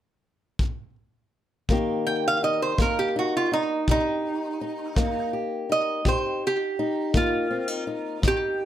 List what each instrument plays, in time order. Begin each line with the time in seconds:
0.59 kick
1.69 steel-string acoustic guitar C3 D#3 A#3 D#4 G4, kick
2.07 resonator guitar played with a steel bar G5
2.28 resonator guitar played with a steel bar F5
2.43 steel-string acoustic guitar D#4, resonator guitar played with a steel bar D#5
2.62 resonator guitar played with a steel bar C5
2.78 steel-string acoustic guitar D#3 A#3, kick
2.82 resonator guitar played with a steel bar A#4
2.99 resonator guitar played with a steel bar G4
3.16 steel-string acoustic guitar D#4, resonator guitar played with a steel bar F#4
3.37 resonator guitar played with a steel bar F4
3.52 steel-string acoustic guitar D#4, resonator guitar played with a steel bar D#4
3.88 steel-string acoustic guitar C3 G4, resonator guitar played with a steel bar D#4, kick
4.61 steel-string acoustic guitar D#4
4.96 steel-string acoustic guitar D#3 A#3, kick
5.33 steel-string acoustic guitar G4
5.69 steel-string acoustic guitar D#4, resonator guitar played with a steel bar D#5
6.05 steel-string acoustic guitar C3 G4, resonator guitar played with a steel bar C5, kick
6.47 resonator guitar played with a steel bar G4
6.79 steel-string acoustic guitar D#4
7.14 steel-string acoustic guitar D#3 A#3, resonator guitar played with a steel bar F4, kick
7.51 steel-string acoustic guitar C4
7.68 steel-string acoustic guitar D#4
7.87 steel-string acoustic guitar D#4
8.22 steel-string acoustic guitar C3 D#4, kick
8.28 resonator guitar played with a steel bar G4